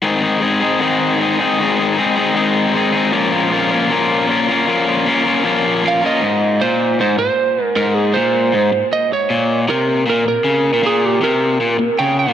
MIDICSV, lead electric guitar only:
0, 0, Header, 1, 2, 480
1, 0, Start_track
1, 0, Key_signature, -4, "major"
1, 0, Tempo, 385356
1, 49, Time_signature, 4, 2, 24, 8
1, 15360, End_track
2, 0, Start_track
2, 0, Title_t, "Lead electric guitar"
2, 0, Program_c, 0, 29
2, 7325, Note_on_c, 0, 77, 72
2, 7543, Note_off_c, 0, 77, 0
2, 7548, Note_on_c, 0, 75, 75
2, 8240, Note_on_c, 0, 72, 79
2, 8274, Note_off_c, 0, 75, 0
2, 8714, Note_off_c, 0, 72, 0
2, 8729, Note_on_c, 0, 72, 76
2, 8936, Note_off_c, 0, 72, 0
2, 8951, Note_on_c, 0, 72, 78
2, 9524, Note_off_c, 0, 72, 0
2, 9524, Note_on_c, 0, 70, 78
2, 9673, Note_off_c, 0, 70, 0
2, 9673, Note_on_c, 0, 70, 91
2, 9896, Note_off_c, 0, 70, 0
2, 9896, Note_on_c, 0, 68, 74
2, 10135, Note_on_c, 0, 72, 85
2, 10146, Note_off_c, 0, 68, 0
2, 11053, Note_off_c, 0, 72, 0
2, 11120, Note_on_c, 0, 75, 78
2, 11363, Note_off_c, 0, 75, 0
2, 11375, Note_on_c, 0, 73, 85
2, 12081, Note_on_c, 0, 70, 82
2, 12102, Note_off_c, 0, 73, 0
2, 12520, Note_off_c, 0, 70, 0
2, 12575, Note_on_c, 0, 70, 82
2, 12793, Note_off_c, 0, 70, 0
2, 12808, Note_on_c, 0, 70, 86
2, 13529, Note_off_c, 0, 70, 0
2, 13534, Note_on_c, 0, 68, 89
2, 13767, Note_off_c, 0, 68, 0
2, 13767, Note_on_c, 0, 67, 83
2, 13992, Note_off_c, 0, 67, 0
2, 13997, Note_on_c, 0, 70, 86
2, 14932, Note_on_c, 0, 79, 88
2, 14972, Note_off_c, 0, 70, 0
2, 15180, Note_off_c, 0, 79, 0
2, 15186, Note_on_c, 0, 77, 94
2, 15360, Note_off_c, 0, 77, 0
2, 15360, End_track
0, 0, End_of_file